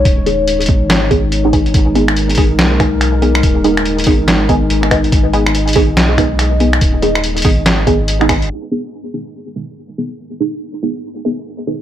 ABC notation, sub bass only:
X:1
M:4/4
L:1/8
Q:"Swing 16ths" 1/4=142
K:G#m
V:1 name="Sub bass" clef=bass
D,,,3 G,,,4- G,,, | G,,,4 B,,,4 | D,,,3 G,,,3 G,,,2 | G,,,4 B,,,4 |
D,,,3 G,,,4- G,,, | z8 | z8 |]